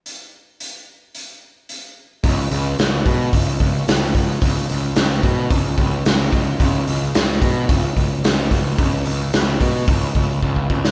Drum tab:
HH |x---x---x---x---|o-o-o-o-o-o-o-o-|o-o-o-o-o-o-o-o-|o-o-o-o-o-o-o-o-|
SD |----------------|----o-------o---|----o-------o---|----o-------o---|
BD |----------------|o-----o-o-o---o-|o-----o-o-o---o-|o-----o-o-o---o-|

HH |o-o-o-o-o-o-----|
SD |----o----------o|
BD |o-----o-o-o-ooo-|